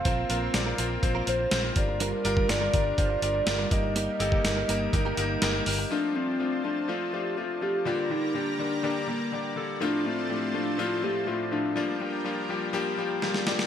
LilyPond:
<<
  \new Staff \with { instrumentName = "Analog synth pad" } { \time 4/4 \key f \mixolydian \tempo 4 = 123 << { <bes f'>2.~ <bes f'>8 <g d' bes'>8~ | <g d' bes'>2.~ <g d' bes'>8 <g ees'>8~ | <g ees'>1 | <f' c'' a''>1 |
<g' bes' bes''>1 | <a f' c'' a''>1 | <f' bes' g''>1 | } \\ { c'2.~ c'8 r8 | r2. r8 bes8~ | bes1 | d''1~ |
d''1~ | d''1 | d''1 | } >> }
  \new Staff \with { instrumentName = "Soft synth lead" } { \time 4/4 \key f \mixolydian f''4. r4 c''4 d''8 | bes'4 d''4 d''8 d''4 ees''8 | ees''2.~ ees''8 r8 | d'8 c'4 d'8 f'8 g'8 f'8 g'8 |
f'8 ees'8 d'8 d'4 bes4 r8 | d'8 c'4 d'8 f'8 g'8 f'8 d'8~ | d'8 r2. r8 | }
  \new Staff \with { instrumentName = "Clean electric guitar" } { \time 4/4 \key f \mixolydian <f c' f' bes'>16 r16 <f c' f' bes'>16 <f c' f' bes'>16 r16 <f c' f' bes'>16 <f c' f' bes'>16 r8 <f c' f' bes'>16 r4. | <g d' f' bes'>16 r16 <g d' f' bes'>16 <g d' f' bes'>16 r16 <g d' f' bes'>16 <g d' f' bes'>16 r4. <g d' f' bes'>16 r8 | <bes ees' g' bes'>16 r16 <bes ees' g' bes'>16 <bes ees' g' bes'>16 r16 <bes ees' g' bes'>16 <bes ees' g' bes'>16 r8 <bes ees' g' bes'>16 r4. | r1 |
r1 | r1 | r1 | }
  \new Staff \with { instrumentName = "Grand piano" } { \time 4/4 \key f \mixolydian <c' f' bes' c''>8 <c' f' bes' c''>8 <c' f' bes' d''>8 <c' f' bes' c''>8 <c' f' bes' c''>8 <c' f' bes' c''>8 <c' f' bes' c''>8 <d' f' g' bes'>8~ | <d' f' g' bes'>8 <d' f' g' bes'>8 <d' f' g' bes'>8 <d' f' g' bes'>8 <d' f' g' c''>8 <d' f' g' bes'>8 <d' f' g' bes'>8 <bes ees' g' bes'>8~ | <bes ees' g' bes'>8 <bes ees' g' a'>8 <bes ees' g' bes'>8 <bes ees' g' bes'>8 <bes ees' g' bes'>8 <bes ees' g' bes'>8 <bes ees' g' bes'>8 <bes ees' g' bes'>8 | <f a c' d' f'>8 <f a c' d' f'>8 <f a c' d' f'>8 <f a c' d' f'>8 <f a c' d' f'>8 <f a c' d' f'>8 <f a c' d' f'>8 <f a c' d' f'>8 |
<d g bes d' g'>8 <d g bes d' g'>8 <d g bes d' g'>8 <d g bes d' bes'>8 <d g bes d' g'>8 <d g bes d' g'>8 <d g bes d' g'>8 <d g bes d' a'>8 | <a, f a c' d' f'>8 <a, f a c' d' f'>8 <a, f a c' d' g'>8 <a, f a c' d' f'>8 <a, f a c' d' f'>8 <a, f a c' d' f'>8 <a, f a c' d' f'>8 <a, f a c' d' f'>8 | <f g bes d' f'>8 <f g bes d' g'>8 <f g bes d' f'>8 <f g bes d' g'>8 <f g bes d' g'>8 <f g bes d' g'>8 <f g bes d' g'>8 <f g bes d' g'>8 | }
  \new Staff \with { instrumentName = "Fingered electric bass" } { \clef bass \time 4/4 \key f \mixolydian bes,,8 bes,,8 bes,,8 bes,,8 bes,,8 bes,,8 bes,,8 g,,8~ | g,,8 g,,8 g,,8 g,,8 g,,8 g,,8 g,,8 g,,8~ | g,,8 g,,8 g,,8 g,,8 g,,8 g,,8 g,,8 g,,8 | r1 |
r1 | r1 | r1 | }
  \new DrumStaff \with { instrumentName = "Drums" } \drummode { \time 4/4 <hh bd>8 hh8 <hh sn>8 hh8 <hh bd>8 hh8 <hh sn>8 <hh bd>8 | hh8 hh16 bd16 <hh sn>8 <hh bd>8 <hh bd>8 hh8 <hh sn>8 <hh bd>8 | hh8 hh16 bd16 <hh sn>8 hh8 <hh bd>8 hh8 <hh sn>8 hho8 | r4 r4 r4 r4 |
r4 r4 r4 r4 | r4 r4 r4 r4 | r4 r4 r4 sn16 sn16 sn16 sn16 | }
>>